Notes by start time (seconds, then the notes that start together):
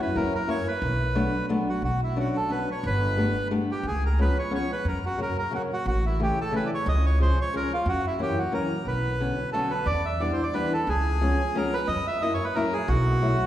0.02 B4
0.15 F#2 F#3 A#3 C#4 E4 A#4
0.35 A#4
0.48 F#3 A#3 C#4 E4 C#5
0.68 B4
0.82 B1
1.15 F#3 A3 B3 D4
1.49 F#3 A3 B3 D4
1.69 F#4
1.82 B1 F#4
2.03 E4
2.16 F#3 B3 C#4 D4 F#4
2.36 A4
2.49 F#3 B3 C#4 D4 B4
2.72 C#5
2.83 G1 B4
3.17 G3 A3 B3 D4
3.51 G3 A3 B3 D4
3.71 G4
3.83 C#2
3.87 G#4
4.06 A#4
4.19 F3 G#3 B3 C#4 B4
4.39 C#5
4.51 F3 G#3 B3 C#4 C#5
4.72 B4
4.85 F#2 A#4
5.06 F#4
5.18 C#3 F#3 A#3 C#4
5.22 A#4
5.39 A#4
5.51 C#3 F#3 A#3 C#4
5.55 F#4
5.73 F#4
5.86 A1 F#4
6.06 E4
6.20 C#3 E3 A3 C#4 G4
6.41 A4
6.51 C#3 E3 A3 C#4
6.56 B4
6.66 D5
6.74 C#5
6.86 C#2 D#5
7.06 C#5
7.20 C#3 F3 G#3 C#4 C5
7.41 C#5
7.53 C#3 F3 G#3 C#4 A#4
7.74 F4
7.86 F#2 F#4
8.07 E4
8.19 E3 F#3 A#3 C#4 G4
8.38 F#4
8.52 E3 F#3 A#3 C#4 A#4
8.85 B1 B4
9.20 D3 F#3 B3 C#4
9.53 D3 F#3 B3 C#4 A4
9.71 B4
9.86 E2 D5
10.05 E5
10.20 E3 G3 B3 D4 D5
10.33 C5
10.43 D5
10.53 E3 G3 B3 D4 B4
10.73 A4
10.87 C#2 G#4
11.21 F3 G#3 B3 C#4
11.55 F3 G#3 B3 C#4 A#4
11.74 B4
11.88 F#2 D#5
12.07 E5
12.22 F#3 A#3 C#4 E4 D#5
12.34 C#5
12.44 B4
12.55 F#3 A#3 C#4 E4 A#4
12.73 G#4
12.88 B1 F#4
13.22 F#3 A3 B3 E4